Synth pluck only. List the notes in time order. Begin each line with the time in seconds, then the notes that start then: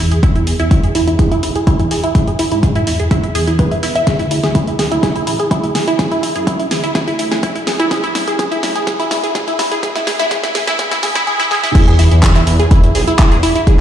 0.12 G#4
0.23 E4
0.36 E4
0.47 G#4
0.60 E4
0.71 E4
0.84 G#4
0.95 E4
1.08 E4
1.19 G#4
1.32 E4
1.43 E4
1.56 G#4
1.67 E4
1.80 E4
1.91 G#4
2.04 E4
2.15 E4
2.28 G#4
2.39 E4
2.52 E4
2.63 G#4
2.76 E4
2.87 E4
3.00 G#4
3.11 E4
3.24 E4
3.35 G#4
3.48 E4
3.59 B4
3.71 E5
3.83 E4
3.96 E5
4.07 G#4
4.20 E4
4.31 E4
4.44 G#4
4.55 E4
4.68 E4
4.79 G#4
4.92 E4
5.03 G#4
5.16 E4
5.27 E4
5.40 G#4
5.51 E4
5.64 E4
5.75 G#4
5.88 E4
5.99 G#4
6.11 E4
6.23 E4
6.36 G#4
6.47 E4
6.60 E4
6.71 G#4
6.84 E4
6.95 G#4
7.08 E4
7.19 E4
7.32 G#4
7.43 E4
7.56 E4
7.67 G#4
7.80 E4
7.91 G#4
8.04 E4
8.15 E4
8.28 G#4
8.39 G#4
8.52 E4
8.63 E4
8.76 G#4
8.87 G#4
9.00 E4
9.11 E4
9.24 G#4
9.35 G#4
9.48 E4
9.59 E4
9.72 G#4
9.83 G#4
9.95 E4
10.07 G#4
10.19 E4
10.31 G#4
10.43 E4
10.55 G#4
10.68 E4
10.79 G#4
10.91 E4
11.03 G#4
11.16 E4
11.27 G#4
11.40 E4
11.51 G#4
11.64 E4
11.75 E4
11.87 G#4
11.99 E4
12.11 E4
12.23 G#4
12.36 E4
12.47 E4
12.60 G#4
12.71 E4
12.84 E4
12.95 G#4
13.07 E4
13.19 E4
13.32 G#4
13.43 E4
13.56 E4
13.67 G#4